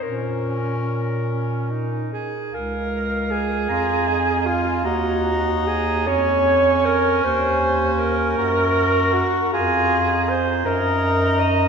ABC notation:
X:1
M:6/8
L:1/8
Q:3/8=52
K:Bbm
V:1 name="Clarinet"
B4- B z | [K:Db] f3 b a a | b3 a3- | a3 b3- |
b2 z b3 |]
V:2 name="Alto saxophone"
D3 D E A | [K:Db] B2 A3 F | G2 A d2 B | c2 B3 G |
A2 c B2 e |]
V:3 name="Tenor saxophone"
D4- D z | [K:Db] z3 F E F | E3 D3- | D3 G3 |
F2 z E3 |]
V:4 name="Bass clarinet" clef=bass
B,,4- B,, z | [K:Db] D,,3 F,,3 | E,,3 F,,3 | E,,3 G,,2 z |
F,,3 G,,3 |]